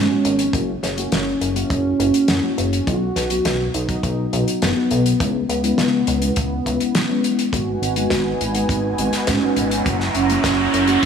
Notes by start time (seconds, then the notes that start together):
Already playing: C#4
0.10 G#3 B3 D#4 F#4
0.25 G#1, closed hi-hat
0.39 closed hi-hat
0.53 F#1 A#3 C#4 E4 F#4, kick, closed hi-hat
0.83 F#1 C#4, snare, closed hi-hat
0.98 A#3 C#4 E4 F#4, closed hi-hat
1.12 F#1, snare, closed hi-hat
1.41 F#1, closed hi-hat
1.56 A#3 C#4 E4 F#4, closed hi-hat
1.70 F#1, kick, closed hi-hat
2.00 F#1 A#3 C#4 E4 F#4, closed hi-hat
2.14 closed hi-hat
2.28 F#2, snare, closed hi-hat
2.43 A#3 C#4 E4 F#4
2.58 F#1, closed hi-hat
2.73 closed hi-hat
2.87 B1 F#3 B3 D#4 F#4, kick, closed hi-hat
3.16 B1, snare, closed hi-hat
3.30 F#3 B3 D#4 F#4, closed hi-hat
3.45 B1, snare, closed hi-hat
3.74 B1 D#4, closed hi-hat
3.89 F#3 B3 D#4 F#4, kick, closed hi-hat
4.03 B1, kick, closed hi-hat
4.33 B1 F#3 B3 D#4 F#4, closed hi-hat
4.48 closed hi-hat
4.62 F#1 B3, snare, closed hi-hat
4.77 F#3 B3 D#4 F#4
4.91 B1, closed hi-hat
5.06 closed hi-hat
5.20 C#2 G#3 B3 C#4 E4, kick, closed hi-hat
5.49 C#2 B3, closed hi-hat
5.64 G#3 B3 C#4 E4, closed hi-hat
5.78 C#2, snare, closed hi-hat
6.07 C#2, closed hi-hat
6.22 G#3 B3 C#4 E4, closed hi-hat
6.36 C#2, kick, closed hi-hat
6.66 C#2 G#3 B3 C#4 E4, kick, closed hi-hat
6.80 closed hi-hat
6.95 snare, closed hi-hat
7.09 G#3 B3 C#4 E4
7.24 closed hi-hat
7.39 closed hi-hat
7.53 G#1 G#3 B3 D#4 F#4 B4 F#5 G#5, kick, closed hi-hat, riser
7.82 G#1, closed hi-hat
7.96 G#3 B3 D#4 F#4, closed hi-hat
8.10 G#1, kick, snare, closed hi-hat
8.40 G#1 D#4, closed hi-hat
8.55 G#3 B3 D#4 F#4, closed hi-hat
8.69 G#1, kick, closed hi-hat
8.98 G#1 G#3 B3 D#4 F#4, closed hi-hat
9.13 snare, closed hi-hat
9.27 G#2 C#4, kick, snare, closed hi-hat
9.42 G#3 B3 D#4 F#4
9.56 G#1, closed hi-hat
9.71 closed hi-hat
9.86 F#1 A#3 C#4 E4 F#4 C#5 A#5, kick, closed hi-hat
10.00 snare
10.15 F#1 C#4, closed hi-hat
10.30 A#3 C#4 E4 F#4, closed hi-hat
10.44 F#1, kick, snare, closed hi-hat
10.74 F#1, closed hi-hat
10.88 A#3 C#4 E4 F#4, closed hi-hat